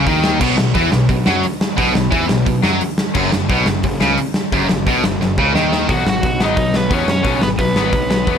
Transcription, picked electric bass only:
0.06 0.39 D#2 medium
0.41 0.58 B1 loud
0.59 0.75 B1 medium
0.75 0.92 E2 medium
0.93 1.09 B1 medium
1.09 1.26 B1 medium
1.28 1.44 F#2 loud
1.78 1.95 B1 loud
1.96 2.11 B1 medium
2.12 2.29 E2 medium
2.30 2.46 B1 medium
2.47 2.63 B1 medium
2.64 2.80 F#2 loud
3.15 3.31 F#1 loud
3.33 3.49 F#1 medium
3.49 3.66 B1 loud
3.67 3.83 F#1 medium
3.84 4.00 F#1 medium
4.01 4.17 C#2 medium
4.52 4.68 F#1 loud
4.71 4.86 F#1 medium
4.87 5.02 B1 medium
5.04 5.20 F#1 medium
5.21 5.37 F#1 medium
5.39 5.54 C#2 loud
5.55 5.86 D#2 loud
5.89 6.04 B1 medium
6.05 6.21 G#1 medium
6.24 6.39 B1 medium
6.40 6.55 G#1 medium
6.57 6.88 B1 medium
6.91 7.06 E2 medium
7.08 7.23 F#2 medium
7.25 7.40 B1 loud
7.42 7.57 G#1 medium
7.59 7.74 B1 medium
7.77 7.92 G#1 medium
7.93 8.24 B1 medium
8.27 8.38 E2 medium

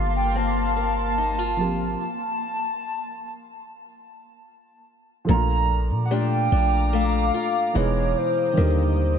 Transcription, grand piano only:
0.00 1.53 F3 medium
0.00 1.54 A#3 medium
0.00 1.55 C4 medium
0.00 1.57 A4 medium
1.57 1.99 F3 medium
1.57 1.99 A#3 medium
1.57 2.00 C4 medium
1.61 2.01 G4 medium
5.25 7.69 F3 medium
5.25 7.70 A3 medium
5.29 7.71 A#3 medium
5.29 7.72 D4 medium
5.33 7.73 F4 medium
7.73 8.57 B2 medium
7.73 8.56 E3 medium
7.73 8.57 G#3 medium
7.73 8.58 D#4 medium
7.78 8.58 G#4 medium
8.53 9.19 D#3 medium
8.53 9.19 G3 medium
8.58 9.19 D3 medium
8.58 9.19 A#3 medium
8.62 9.19 G4 medium

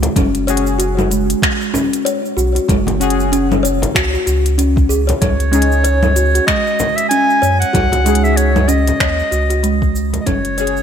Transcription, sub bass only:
0.16 1.35 F#1 loud
2.37 2.59 B1 loud
2.69 3.87 F#1 loud
3.95 4.17 C#2 medium
4.27 5.14 C#2 loud
5.22 6.40 C#2 loud
7.42 7.64 F#2 medium
7.74 8.93 C#2 loud
9.00 9.22 D#2 medium
9.32 10.19 C#2 medium
10.26 10.83 F#1 loud

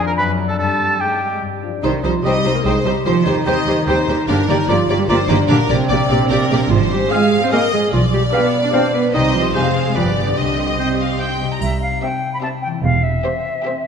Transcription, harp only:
0.00 0.19 F2 medium
0.00 0.78 C4 soft
0.00 0.37 D4 soft
0.00 0.19 G#4 medium
0.00 1.43 C5 medium
0.17 0.60 F#2 medium
0.38 0.61 D4 soft
0.38 0.61 A4 soft
0.59 1.40 G2 soft
0.80 1.43 C4 soft
1.21 1.62 G4 soft
1.42 1.85 G2 medium
1.62 1.85 D4 soft
1.62 3.45 G4 soft
1.83 3.07 C3 soft
2.03 2.84 G3 soft
2.24 2.65 D#4 soft
2.45 3.67 C5 soft
2.66 4.30 D#4 soft
2.86 5.68 G3 soft
3.06 4.29 D#3 soft
3.26 4.07 C4 soft
3.47 3.87 G4 soft
3.68 4.30 C5 soft
3.88 6.73 G4 soft
4.08 4.30 C4 soft
4.29 5.51 G2 medium
4.49 5.28 D3 soft
4.68 5.08 D4 soft
4.89 6.09 A#4 medium
5.09 5.89 D4 soft
5.30 5.51 D3 soft
5.50 6.72 A#2 medium
5.69 6.50 G3 soft
5.90 6.30 D4 medium
6.10 6.72 A#4 medium
6.31 6.72 D4 medium
6.51 6.72 G3 soft
6.72 7.94 G#2 medium
6.91 7.71 G#3 medium
7.11 7.51 F4 medium
7.32 7.94 C5 soft
7.52 8.33 F4 medium
7.73 7.94 G#3 soft
7.93 9.16 B2 medium
8.14 8.94 B3 soft
8.34 8.73 F4 soft
8.54 9.16 D5 soft
8.74 9.16 F4 soft
8.95 9.16 B3 soft
9.15 9.57 C3 medium
9.35 9.57 D#4 soft
9.55 9.98 F2 soft
9.75 10.39 F4 soft
9.75 9.97 G#4 soft
9.95 10.38 G2 soft
10.16 10.39 D4 soft
10.16 11.55 G4 soft
10.38 11.41 C3 soft
10.58 11.39 G3 soft
10.79 11.18 D#4 soft
10.99 13.87 C5 soft
11.19 11.62 D#4 soft
11.41 12.76 C3 soft
11.41 13.87 G3 soft
11.47 12.69 C4 soft
11.51 12.74 E4 soft
11.56 12.78 G4 soft
12.66 13.87 E3 soft
12.71 13.87 C4 soft
12.75 13.87 E4 soft
12.79 13.87 G4 soft

